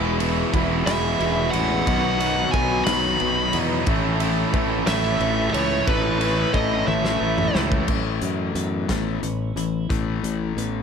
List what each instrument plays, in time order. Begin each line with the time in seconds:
Already playing: fingered electric bass E1, distorted electric guitar E2 B2 E3, overdriven electric guitar E3 G#3 B3 E4, string section G#4 E5 B5
0.19 distorted electric guitar E2 B2 E3, overdriven electric guitar G#3 B3 E4, ride
0.52 fingered electric bass E1, distorted electric guitar E2 B2 E3 G#3 B3 E4, kick, ride
0.85 fingered electric bass E1, distorted electric guitar E2 B2 E3, overdriven electric guitar E3 G#3 B3 E4, lead electric guitar E5, snare, ride
1.19 fingered electric bass E1, distorted electric guitar E2 B2 E3, overdriven electric guitar E3 G#3 B3 E4, ride
1.51 fingered electric bass A1, distorted electric guitar E2 B2 E3, overdriven electric guitar G#3 B3 E4, lead electric guitar F#5, ride
1.86 fingered electric bass B1, overdriven electric guitar B2 D#3 F#3 B3 D#4, distorted electric guitar B2 F#3 B3, string section F#4 D#5, kick, ride
2.19 distorted electric guitar B2 F#3 B3, overdriven electric guitar F#3 B3 D#4, ride
2.52 fingered electric bass B1, distorted electric guitar B2 D#3 F#3 B3 D#4, lead electric guitar G#5, kick, ride
2.84 fingered electric bass B1, distorted electric guitar B2 F#3, overdriven electric guitar F#3 B3 D#4, lead electric guitar B5, snare, ride
2.89 overdriven electric guitar B2 D#3, distorted electric guitar B3
3.19 fingered electric bass B1, distorted electric guitar B2 F#3 B3, overdriven electric guitar D#3 F#3 B3 D#4, ride
3.52 fingered electric bass E2, distorted electric guitar B2 F#3 B3, overdriven electric guitar F#3 B3 D#4, ride
3.86 fingered electric bass A1, overdriven electric guitar A2 E3 A3 C#4 E4, distorted electric guitar A2 E3 A3, string section A4 C#5 B5, kick, ride
4.20 distorted electric guitar A2 E3 A3, overdriven electric guitar A3 C#4 E4, ride
4.53 fingered electric bass A1, distorted electric guitar A2 E3 A3 C#4 E4, kick, ride
4.86 fingered electric bass A1, distorted electric guitar A2 E3 A3, overdriven electric guitar A2 E3 A3 C#4 E4, lead electric guitar E5, snare, ride
5.20 fingered electric bass A1, distorted electric guitar A2 E3 A3, overdriven electric guitar E3 A3 C#4 E4, ride
5.53 fingered electric bass C#2, distorted electric guitar A2 E3 A3, overdriven electric guitar A3 C#4 E4, lead electric guitar C#5, ride
5.86 fingered electric bass A1, overdriven electric guitar A2 E3 A3 C#4 E4, distorted electric guitar A2 E3 A3, lead electric guitar B4, kick, ride
6.20 distorted electric guitar A2 E3 A3, overdriven electric guitar A3 C#4 E4, ride
6.53 fingered electric bass A1, distorted electric guitar A2 E3 A3 C#4 E4, lead electric guitar D#5, kick, ride
6.86 fingered electric bass A1, distorted electric guitar A2 E3 A3, overdriven electric guitar A2 E3 A3 C#4 E4, lead electric guitar E5, high tom
7.05 snare
7.21 fingered electric bass A1, distorted electric guitar A2 E3 A3, overdriven electric guitar E3 A3 C#4 E4
7.38 mid tom
7.54 fingered electric bass C#2, distorted electric guitar A2 E3 A3, overdriven electric guitar A3 C#4 E4, snare
7.72 kick
7.88 fingered electric bass A1, overdriven electric guitar A2 E3 A3, clean electric guitar A2, kick, crash
8.22 fingered electric bass F#2, clean electric guitar E3, closed hi-hat
8.55 fingered electric bass F#2, clean electric guitar B3, closed hi-hat
8.88 fingered electric bass A1, overdriven electric guitar A2 E3 A3, clean electric guitar E4, kick, snare, closed hi-hat
9.23 fingered electric bass A1, overdriven electric guitar A2 E3, clean electric guitar C#4, closed hi-hat
9.56 fingered electric bass A1, overdriven electric guitar A2 E3, clean electric guitar E4, closed hi-hat
9.89 fingered electric bass A1, overdriven electric guitar A2 E3 A3, clean electric guitar A2, kick, closed hi-hat
10.24 fingered electric bass A1, closed hi-hat
10.57 fingered electric bass A1, clean electric guitar B3, closed hi-hat